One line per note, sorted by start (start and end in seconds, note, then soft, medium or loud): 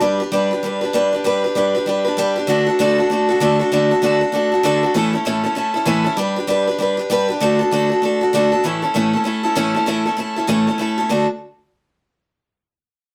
0.01 0.20 G3 medium
0.01 0.21 D4 medium
0.01 0.21 G4 loud
0.01 0.19 B4 medium
0.20 0.32 D4 medium
0.20 0.32 G4 medium
0.20 0.32 B4 medium
0.32 0.52 G3 medium
0.32 0.52 D4 loud
0.32 0.52 G4 loud
0.32 0.50 B4 medium
0.51 0.63 D4 soft
0.51 0.64 G4 medium
0.51 0.63 B4 medium
0.63 0.83 G3 medium
0.63 0.83 D4 medium
0.63 0.82 G4 medium
0.63 0.80 B4 medium
0.81 0.93 D4 soft
0.81 0.94 G4 medium
0.81 0.93 B4 medium
0.93 1.13 G3 medium
0.93 1.14 D4 loud
0.93 1.13 G4 loud
0.93 1.11 B4 loud
1.13 1.24 D4 medium
1.13 1.25 G4 medium
1.13 1.25 B4 medium
1.24 1.44 G3 medium
1.24 1.45 D4 medium
1.24 1.45 G4 medium
1.24 1.43 B4 loud
1.44 1.55 D4 soft
1.44 1.56 G4 medium
1.44 1.56 B4 medium
1.55 1.75 G3 medium
1.55 1.76 D4 medium
1.55 1.75 G4 medium
1.55 1.73 B4 loud
1.75 1.86 D4 soft
1.75 1.88 G4 medium
1.75 1.87 B4 medium
1.86 2.06 G3 medium
1.86 2.07 D4 medium
1.86 2.06 G4 medium
1.86 2.03 B4 medium
2.05 2.17 D4 medium
2.05 2.17 G4 medium
2.05 2.17 B4 medium
2.17 2.37 G3 medium
2.17 2.37 D4 loud
2.17 2.36 G4 loud
2.17 2.35 B4 loud
2.36 2.47 D4 soft
2.36 2.49 G4 medium
2.36 2.48 B4 medium
2.47 2.67 D3 loud
2.47 2.68 A3 medium
2.47 2.68 D4 medium
2.47 2.67 F#4 loud
2.47 2.65 A4 loud
2.67 2.79 D4 medium
2.67 2.80 F#4 medium
2.67 2.79 A4 medium
2.79 2.99 D3 medium
2.79 2.99 A3 loud
2.79 2.99 D4 medium
2.79 2.99 F#4 loud
2.79 2.97 A4 loud
2.98 3.10 D4 soft
2.98 3.11 F#4 medium
2.98 3.10 A4 medium
3.10 3.30 A3 medium
3.10 3.30 D4 medium
3.10 3.29 F#4 medium
3.10 3.27 A4 medium
3.29 3.40 D4 medium
3.29 3.41 F#4 medium
3.29 3.41 A4 medium
3.40 3.60 D3 medium
3.40 3.61 A3 loud
3.40 3.61 D4 loud
3.40 3.60 F#4 loud
3.40 3.58 A4 loud
3.59 3.72 D4 soft
3.59 3.72 F#4 medium
3.59 3.72 A4 medium
3.72 3.91 D3 medium
3.72 3.92 A3 medium
3.72 3.92 D4 medium
3.72 3.92 F#4 loud
3.72 3.90 A4 medium
3.91 4.02 D4 medium
3.91 4.02 F#4 medium
3.91 4.03 A4 medium
4.02 4.22 D3 medium
4.02 4.22 A3 medium
4.02 4.22 D4 medium
4.02 4.22 F#4 loud
4.02 4.20 A4 medium
4.21 4.32 D4 soft
4.21 4.33 A4 medium
4.32 4.52 A3 medium
4.32 4.53 D4 medium
4.32 4.53 F#4 medium
4.32 4.51 A4 medium
4.52 4.63 D4 soft
4.52 4.64 F#4 medium
4.52 4.64 A4 medium
4.63 4.83 D3 loud
4.63 4.84 A3 loud
4.63 4.84 D4 loud
4.63 4.83 F#4 loud
4.63 4.82 A4 loud
4.83 4.95 D4 soft
4.83 4.96 F#4 medium
4.83 4.95 A4 medium
4.94 5.14 A2 medium
4.94 5.14 E3 medium
4.94 5.15 A3 medium
4.94 5.14 C#4 medium
4.94 5.14 E4 medium
4.94 5.12 A4 loud
5.13 5.25 A3 medium
5.13 5.25 C#4 medium
5.13 5.26 E4 medium
5.13 5.25 A4 medium
5.25 5.45 A2 medium
5.25 5.45 E3 medium
5.25 5.46 A3 medium
5.25 5.45 C#4 medium
5.25 5.43 E4 loud
5.25 5.42 A4 loud
5.44 5.54 A3 soft
5.44 5.55 C#4 medium
5.44 5.56 E4 medium
5.44 5.56 A4 medium
5.55 5.75 A3 medium
5.55 5.76 C#4 medium
5.55 5.74 E4 medium
5.55 5.73 A4 medium
5.74 5.85 A3 soft
5.74 5.86 C#4 medium
5.74 5.86 E4 medium
5.74 5.87 A4 medium
5.85 6.06 A2 loud
5.85 6.06 E3 loud
5.85 6.06 A3 loud
5.85 6.05 C#4 loud
5.85 6.05 E4 loud
5.85 6.03 A4 loud
6.04 6.16 A3 soft
6.04 6.18 C#4 medium
6.04 6.18 E4 medium
6.04 6.17 A4 medium
6.17 6.37 G3 medium
6.17 6.38 D4 medium
6.17 6.37 G4 medium
6.17 6.35 B4 loud
6.36 6.47 D4 medium
6.36 6.48 G4 medium
6.36 6.48 B4 medium
6.47 6.68 G3 medium
6.47 6.68 D4 medium
6.47 6.68 G4 medium
6.47 6.66 B4 loud
6.67 6.79 D4 soft
6.67 6.79 G4 medium
6.67 6.79 B4 medium
6.78 6.98 G3 medium
6.78 6.99 D4 medium
6.78 6.98 G4 medium
6.78 6.96 B4 medium
6.97 7.09 D4 medium
6.97 7.10 G4 medium
6.97 7.10 B4 medium
7.10 7.29 G3 loud
7.10 7.30 D4 loud
7.10 7.29 G4 loud
7.10 7.27 B4 loud
7.28 7.40 D4 medium
7.28 7.41 G4 medium
7.28 7.41 B4 medium
7.40 7.60 D3 medium
7.40 7.61 A3 loud
7.40 7.61 D4 medium
7.40 7.60 F#4 loud
7.40 7.58 A4 loud
7.59 7.71 D4 soft
7.59 7.72 F#4 medium
7.59 7.71 A4 medium
7.71 7.91 D3 medium
7.71 7.92 A3 medium
7.71 7.92 D4 medium
7.71 7.90 F#4 medium
7.71 7.88 A4 loud
7.90 8.02 D4 medium
7.90 8.03 F#4 soft
7.90 8.02 A4 medium
8.02 8.22 A3 medium
8.02 8.22 D4 medium
8.02 8.22 F#4 medium
8.02 8.20 A4 medium
8.21 8.33 D4 soft
8.21 8.34 F#4 medium
8.21 8.33 A4 medium
8.33 8.53 D3 loud
8.33 8.53 A3 medium
8.33 8.53 D4 loud
8.33 8.52 F#4 loud
8.33 8.51 A4 loud
8.52 8.65 D4 soft
8.52 8.65 F#4 medium
8.52 8.64 A4 medium
8.64 8.83 A2 medium
8.64 8.84 E3 medium
8.64 8.84 A3 medium
8.64 8.83 C#4 medium
8.64 8.82 E4 medium
8.64 8.81 A4 medium
8.82 8.94 A3 medium
8.82 8.95 C#4 medium
8.82 8.95 E4 medium
8.82 8.94 A4 medium
8.94 9.14 A2 medium
8.94 9.14 E3 medium
8.94 9.15 A3 loud
8.94 9.15 C#4 medium
8.94 9.13 E4 loud
8.94 9.12 A4 loud
9.13 9.23 A3 soft
9.13 9.24 C#4 soft
9.13 9.25 E4 soft
9.13 9.25 A4 medium
9.24 9.44 A3 medium
9.24 9.45 C#4 medium
9.24 9.43 E4 medium
9.24 9.42 A4 medium
9.43 9.55 A3 soft
9.43 9.55 C#4 medium
9.43 9.56 E4 medium
9.43 9.56 A4 medium
9.55 9.75 A2 medium
9.55 9.76 E3 loud
9.55 9.76 A3 loud
9.55 9.76 C#4 loud
9.55 9.75 E4 loud
9.55 9.73 A4 loud
9.75 9.86 A3 medium
9.75 9.87 C#4 medium
9.75 9.87 E4 medium
9.75 9.87 A4 medium
9.86 10.06 A2 medium
9.86 10.07 E3 medium
9.86 10.07 A3 medium
9.86 10.07 C#4 loud
9.86 10.06 E4 loud
9.86 10.04 A4 loud
10.06 10.15 A3 medium
10.06 10.17 C#4 medium
10.06 10.18 E4 medium
10.06 10.18 A4 medium
10.17 10.37 A3 medium
10.17 10.38 C#4 medium
10.17 10.36 E4 medium
10.17 10.35 A4 medium
10.36 10.48 A3 soft
10.36 10.47 C#4 medium
10.36 10.48 E4 medium
10.36 10.48 A4 medium
10.47 10.68 A2 medium
10.47 10.68 E3 medium
10.47 10.68 A3 loud
10.47 10.68 C#4 loud
10.47 10.67 E4 medium
10.47 10.66 A4 loud
10.67 10.77 A3 soft
10.67 10.78 C#4 soft
10.67 10.79 E4 medium
10.67 10.79 A4 medium
10.78 10.98 A3 medium
10.78 10.99 C#4 medium
10.78 10.97 E4 medium
10.78 10.96 A4 medium
10.98 11.09 A3 soft
10.98 11.10 C#4 soft
10.98 11.11 E4 medium
10.98 11.10 A4 medium
11.09 11.26 D3 medium
11.09 11.26 A3 medium
11.09 11.26 D4 medium
11.09 11.26 F#4 medium
11.09 11.27 A4 medium